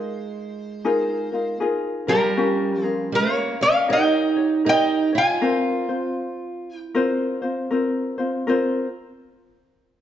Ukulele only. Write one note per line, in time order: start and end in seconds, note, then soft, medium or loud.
0.00 0.84 D#4 soft
0.00 0.85 F4 soft
0.00 0.84 A#4 soft
0.85 1.32 D#4 loud
0.85 1.32 F4 medium
0.85 1.31 G#4 medium
0.85 1.31 A#4 medium
1.32 1.59 D#4 medium
1.32 1.60 F4 medium
1.32 1.60 A#4 medium
1.60 2.08 D#4 medium
1.60 2.07 F4 medium
1.60 2.07 G#4 medium
1.60 2.06 A#4 medium
2.07 2.37 D#4 soft
2.07 2.37 F4 medium
2.07 2.36 A#4 medium
2.37 2.84 C#4 medium
2.37 2.84 F4 medium
2.37 2.84 G4 medium
2.37 2.82 A#4 loud
2.84 3.89 C#4 soft
2.84 3.89 F4 soft
2.84 3.88 A#4 soft
3.88 4.37 D#4 medium
3.88 4.36 G4 medium
3.88 4.36 A#4 medium
3.88 4.35 C#5 medium
4.37 4.64 D#4 soft
4.37 4.65 G4 medium
4.37 4.65 C#5 medium
4.65 5.13 D#4 medium
4.65 5.13 G4 medium
4.65 5.13 A#4 medium
4.65 5.11 C#5 medium
5.13 5.41 D#4 soft
5.13 5.42 C#5 medium
5.41 5.89 C4 medium
5.41 5.88 F4 medium
5.41 5.89 A#4 medium
5.41 5.87 C5 loud
5.89 6.95 C4 soft
5.89 6.95 F4 soft
5.89 6.96 C5 medium
6.95 7.42 C4 medium
6.95 7.42 F4 loud
6.95 7.42 A#4 medium
6.95 7.41 C5 loud
7.42 7.70 C4 medium
7.42 7.71 F4 medium
7.42 7.71 C5 medium
7.71 8.19 C4 medium
7.71 8.18 F4 medium
7.71 8.18 A#4 medium
7.71 8.17 C5 medium
8.18 8.47 C4 medium
8.18 8.48 F4 medium
8.18 8.47 C5 medium
8.47 8.86 C4 medium
8.47 8.86 F4 loud
8.47 8.85 A#4 medium
8.47 8.87 C5 medium